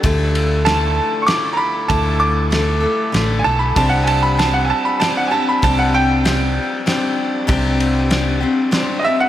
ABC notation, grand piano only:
X:1
M:3/4
L:1/16
Q:1/4=97
K:Clyd
V:1 name="Grand piano"
G2 z2 a4 [^c'd']2 [_b=b]2 | a2 d'4 z4 [^ga] b | a f [^ga] b a f [ga] b a f [ga] b | a f g8- g2- |
g2 z8 [_e=e] f |]